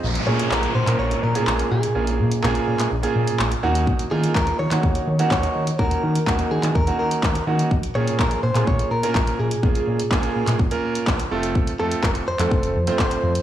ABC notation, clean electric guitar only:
X:1
M:4/4
L:1/8
Q:1/4=125
K:Bbm
V:1 name="Clean electric guitar"
z d B c d B2 A- | A3 z4 z | z A B d3 d2 | B3 A B B2 z |
z d B c d B2 A- | A3 z4 z | z =A B c3 c2 |]